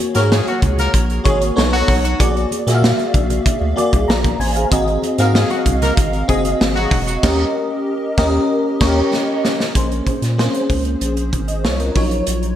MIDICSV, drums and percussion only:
0, 0, Header, 1, 2, 480
1, 0, Start_track
1, 0, Key_signature, -5, "minor"
1, 0, Tempo, 629591
1, 1673, Time_signature, 4, 2, 24, 8
1, 9574, End_track
2, 0, Start_track
2, 0, Title_t, "Drums"
2, 0, Note_on_c, 9, 42, 72
2, 73, Note_off_c, 9, 42, 0
2, 111, Note_on_c, 9, 42, 64
2, 120, Note_on_c, 9, 38, 35
2, 188, Note_off_c, 9, 42, 0
2, 197, Note_off_c, 9, 38, 0
2, 230, Note_on_c, 9, 63, 63
2, 243, Note_on_c, 9, 38, 118
2, 306, Note_off_c, 9, 63, 0
2, 319, Note_off_c, 9, 38, 0
2, 357, Note_on_c, 9, 62, 37
2, 361, Note_on_c, 9, 42, 35
2, 433, Note_off_c, 9, 62, 0
2, 437, Note_off_c, 9, 42, 0
2, 475, Note_on_c, 9, 36, 88
2, 476, Note_on_c, 9, 64, 69
2, 477, Note_on_c, 9, 42, 66
2, 551, Note_off_c, 9, 36, 0
2, 553, Note_off_c, 9, 42, 0
2, 553, Note_off_c, 9, 64, 0
2, 594, Note_on_c, 9, 64, 64
2, 598, Note_on_c, 9, 42, 57
2, 607, Note_on_c, 9, 38, 33
2, 671, Note_off_c, 9, 64, 0
2, 674, Note_off_c, 9, 42, 0
2, 683, Note_off_c, 9, 38, 0
2, 716, Note_on_c, 9, 36, 95
2, 718, Note_on_c, 9, 42, 91
2, 792, Note_off_c, 9, 36, 0
2, 794, Note_off_c, 9, 42, 0
2, 836, Note_on_c, 9, 42, 36
2, 912, Note_off_c, 9, 42, 0
2, 957, Note_on_c, 9, 36, 92
2, 959, Note_on_c, 9, 42, 58
2, 960, Note_on_c, 9, 63, 67
2, 1033, Note_off_c, 9, 36, 0
2, 1035, Note_off_c, 9, 42, 0
2, 1036, Note_off_c, 9, 63, 0
2, 1078, Note_on_c, 9, 42, 57
2, 1155, Note_off_c, 9, 42, 0
2, 1207, Note_on_c, 9, 38, 108
2, 1207, Note_on_c, 9, 62, 28
2, 1283, Note_off_c, 9, 38, 0
2, 1283, Note_off_c, 9, 62, 0
2, 1321, Note_on_c, 9, 42, 36
2, 1397, Note_off_c, 9, 42, 0
2, 1435, Note_on_c, 9, 36, 90
2, 1438, Note_on_c, 9, 63, 71
2, 1442, Note_on_c, 9, 46, 87
2, 1512, Note_off_c, 9, 36, 0
2, 1515, Note_off_c, 9, 63, 0
2, 1519, Note_off_c, 9, 46, 0
2, 1561, Note_on_c, 9, 42, 61
2, 1638, Note_off_c, 9, 42, 0
2, 1678, Note_on_c, 9, 36, 112
2, 1680, Note_on_c, 9, 42, 116
2, 1754, Note_off_c, 9, 36, 0
2, 1756, Note_off_c, 9, 42, 0
2, 1794, Note_on_c, 9, 62, 27
2, 1803, Note_on_c, 9, 42, 35
2, 1870, Note_off_c, 9, 62, 0
2, 1879, Note_off_c, 9, 42, 0
2, 1914, Note_on_c, 9, 63, 50
2, 1921, Note_on_c, 9, 42, 67
2, 1991, Note_off_c, 9, 63, 0
2, 1997, Note_off_c, 9, 42, 0
2, 2038, Note_on_c, 9, 42, 60
2, 2047, Note_on_c, 9, 38, 37
2, 2114, Note_off_c, 9, 42, 0
2, 2123, Note_off_c, 9, 38, 0
2, 2151, Note_on_c, 9, 62, 31
2, 2151, Note_on_c, 9, 63, 64
2, 2166, Note_on_c, 9, 38, 127
2, 2227, Note_off_c, 9, 62, 0
2, 2227, Note_off_c, 9, 63, 0
2, 2242, Note_off_c, 9, 38, 0
2, 2281, Note_on_c, 9, 42, 33
2, 2281, Note_on_c, 9, 62, 38
2, 2357, Note_off_c, 9, 42, 0
2, 2357, Note_off_c, 9, 62, 0
2, 2395, Note_on_c, 9, 36, 87
2, 2395, Note_on_c, 9, 42, 66
2, 2395, Note_on_c, 9, 64, 64
2, 2471, Note_off_c, 9, 42, 0
2, 2471, Note_off_c, 9, 64, 0
2, 2472, Note_off_c, 9, 36, 0
2, 2516, Note_on_c, 9, 64, 59
2, 2517, Note_on_c, 9, 42, 58
2, 2592, Note_off_c, 9, 64, 0
2, 2593, Note_off_c, 9, 42, 0
2, 2636, Note_on_c, 9, 36, 106
2, 2639, Note_on_c, 9, 42, 94
2, 2640, Note_on_c, 9, 62, 31
2, 2713, Note_off_c, 9, 36, 0
2, 2715, Note_off_c, 9, 42, 0
2, 2716, Note_off_c, 9, 62, 0
2, 2757, Note_on_c, 9, 62, 29
2, 2834, Note_off_c, 9, 62, 0
2, 2882, Note_on_c, 9, 42, 56
2, 2884, Note_on_c, 9, 63, 64
2, 2958, Note_off_c, 9, 42, 0
2, 2960, Note_off_c, 9, 63, 0
2, 2996, Note_on_c, 9, 36, 78
2, 2997, Note_on_c, 9, 42, 56
2, 3072, Note_off_c, 9, 36, 0
2, 3073, Note_off_c, 9, 42, 0
2, 3124, Note_on_c, 9, 62, 29
2, 3125, Note_on_c, 9, 38, 117
2, 3200, Note_off_c, 9, 62, 0
2, 3202, Note_off_c, 9, 38, 0
2, 3236, Note_on_c, 9, 36, 94
2, 3239, Note_on_c, 9, 42, 37
2, 3312, Note_off_c, 9, 36, 0
2, 3316, Note_off_c, 9, 42, 0
2, 3358, Note_on_c, 9, 63, 69
2, 3360, Note_on_c, 9, 46, 91
2, 3434, Note_off_c, 9, 63, 0
2, 3436, Note_off_c, 9, 46, 0
2, 3478, Note_on_c, 9, 42, 59
2, 3555, Note_off_c, 9, 42, 0
2, 3596, Note_on_c, 9, 36, 114
2, 3597, Note_on_c, 9, 62, 36
2, 3598, Note_on_c, 9, 42, 115
2, 3672, Note_off_c, 9, 36, 0
2, 3673, Note_off_c, 9, 62, 0
2, 3674, Note_off_c, 9, 42, 0
2, 3711, Note_on_c, 9, 62, 29
2, 3717, Note_on_c, 9, 42, 36
2, 3787, Note_off_c, 9, 62, 0
2, 3793, Note_off_c, 9, 42, 0
2, 3830, Note_on_c, 9, 63, 50
2, 3838, Note_on_c, 9, 42, 71
2, 3906, Note_off_c, 9, 63, 0
2, 3914, Note_off_c, 9, 42, 0
2, 3951, Note_on_c, 9, 42, 65
2, 3960, Note_on_c, 9, 38, 34
2, 4027, Note_off_c, 9, 42, 0
2, 4036, Note_off_c, 9, 38, 0
2, 4067, Note_on_c, 9, 62, 31
2, 4067, Note_on_c, 9, 63, 62
2, 4080, Note_on_c, 9, 38, 117
2, 4143, Note_off_c, 9, 62, 0
2, 4143, Note_off_c, 9, 63, 0
2, 4156, Note_off_c, 9, 38, 0
2, 4190, Note_on_c, 9, 62, 36
2, 4194, Note_on_c, 9, 42, 35
2, 4266, Note_off_c, 9, 62, 0
2, 4271, Note_off_c, 9, 42, 0
2, 4311, Note_on_c, 9, 64, 67
2, 4314, Note_on_c, 9, 36, 79
2, 4314, Note_on_c, 9, 42, 70
2, 4387, Note_off_c, 9, 64, 0
2, 4390, Note_off_c, 9, 36, 0
2, 4390, Note_off_c, 9, 42, 0
2, 4434, Note_on_c, 9, 64, 67
2, 4435, Note_on_c, 9, 42, 56
2, 4444, Note_on_c, 9, 38, 33
2, 4511, Note_off_c, 9, 64, 0
2, 4512, Note_off_c, 9, 42, 0
2, 4520, Note_off_c, 9, 38, 0
2, 4554, Note_on_c, 9, 36, 105
2, 4555, Note_on_c, 9, 42, 93
2, 4630, Note_off_c, 9, 36, 0
2, 4631, Note_off_c, 9, 42, 0
2, 4673, Note_on_c, 9, 62, 28
2, 4674, Note_on_c, 9, 42, 34
2, 4750, Note_off_c, 9, 62, 0
2, 4751, Note_off_c, 9, 42, 0
2, 4795, Note_on_c, 9, 36, 89
2, 4796, Note_on_c, 9, 42, 57
2, 4796, Note_on_c, 9, 63, 65
2, 4871, Note_off_c, 9, 36, 0
2, 4872, Note_off_c, 9, 42, 0
2, 4873, Note_off_c, 9, 63, 0
2, 4915, Note_on_c, 9, 42, 61
2, 4991, Note_off_c, 9, 42, 0
2, 5039, Note_on_c, 9, 62, 29
2, 5040, Note_on_c, 9, 38, 112
2, 5115, Note_off_c, 9, 62, 0
2, 5117, Note_off_c, 9, 38, 0
2, 5152, Note_on_c, 9, 62, 29
2, 5156, Note_on_c, 9, 42, 37
2, 5229, Note_off_c, 9, 62, 0
2, 5233, Note_off_c, 9, 42, 0
2, 5270, Note_on_c, 9, 36, 100
2, 5270, Note_on_c, 9, 46, 89
2, 5271, Note_on_c, 9, 63, 67
2, 5346, Note_off_c, 9, 46, 0
2, 5347, Note_off_c, 9, 36, 0
2, 5347, Note_off_c, 9, 63, 0
2, 5394, Note_on_c, 9, 42, 59
2, 5470, Note_off_c, 9, 42, 0
2, 5515, Note_on_c, 9, 36, 107
2, 5515, Note_on_c, 9, 49, 92
2, 5521, Note_on_c, 9, 38, 112
2, 5591, Note_off_c, 9, 36, 0
2, 5591, Note_off_c, 9, 49, 0
2, 5597, Note_off_c, 9, 38, 0
2, 6235, Note_on_c, 9, 36, 112
2, 6239, Note_on_c, 9, 38, 110
2, 6311, Note_off_c, 9, 36, 0
2, 6315, Note_off_c, 9, 38, 0
2, 6714, Note_on_c, 9, 49, 81
2, 6715, Note_on_c, 9, 36, 109
2, 6720, Note_on_c, 9, 38, 98
2, 6790, Note_off_c, 9, 49, 0
2, 6791, Note_off_c, 9, 36, 0
2, 6796, Note_off_c, 9, 38, 0
2, 6963, Note_on_c, 9, 38, 58
2, 7040, Note_off_c, 9, 38, 0
2, 7202, Note_on_c, 9, 38, 89
2, 7278, Note_off_c, 9, 38, 0
2, 7322, Note_on_c, 9, 38, 83
2, 7398, Note_off_c, 9, 38, 0
2, 7435, Note_on_c, 9, 42, 105
2, 7436, Note_on_c, 9, 36, 97
2, 7511, Note_off_c, 9, 42, 0
2, 7512, Note_off_c, 9, 36, 0
2, 7559, Note_on_c, 9, 42, 41
2, 7635, Note_off_c, 9, 42, 0
2, 7674, Note_on_c, 9, 36, 81
2, 7676, Note_on_c, 9, 42, 64
2, 7750, Note_off_c, 9, 36, 0
2, 7752, Note_off_c, 9, 42, 0
2, 7793, Note_on_c, 9, 42, 55
2, 7802, Note_on_c, 9, 38, 35
2, 7870, Note_off_c, 9, 42, 0
2, 7879, Note_off_c, 9, 38, 0
2, 7924, Note_on_c, 9, 38, 106
2, 8000, Note_off_c, 9, 38, 0
2, 8038, Note_on_c, 9, 42, 55
2, 8115, Note_off_c, 9, 42, 0
2, 8154, Note_on_c, 9, 46, 62
2, 8155, Note_on_c, 9, 36, 78
2, 8230, Note_off_c, 9, 46, 0
2, 8232, Note_off_c, 9, 36, 0
2, 8271, Note_on_c, 9, 42, 53
2, 8347, Note_off_c, 9, 42, 0
2, 8395, Note_on_c, 9, 42, 87
2, 8471, Note_off_c, 9, 42, 0
2, 8514, Note_on_c, 9, 42, 51
2, 8590, Note_off_c, 9, 42, 0
2, 8636, Note_on_c, 9, 42, 55
2, 8637, Note_on_c, 9, 36, 80
2, 8713, Note_off_c, 9, 36, 0
2, 8713, Note_off_c, 9, 42, 0
2, 8752, Note_on_c, 9, 42, 53
2, 8828, Note_off_c, 9, 42, 0
2, 8879, Note_on_c, 9, 38, 101
2, 8955, Note_off_c, 9, 38, 0
2, 8993, Note_on_c, 9, 42, 41
2, 9070, Note_off_c, 9, 42, 0
2, 9112, Note_on_c, 9, 46, 76
2, 9115, Note_on_c, 9, 36, 94
2, 9188, Note_off_c, 9, 46, 0
2, 9192, Note_off_c, 9, 36, 0
2, 9233, Note_on_c, 9, 42, 55
2, 9309, Note_off_c, 9, 42, 0
2, 9351, Note_on_c, 9, 42, 103
2, 9428, Note_off_c, 9, 42, 0
2, 9473, Note_on_c, 9, 42, 42
2, 9549, Note_off_c, 9, 42, 0
2, 9574, End_track
0, 0, End_of_file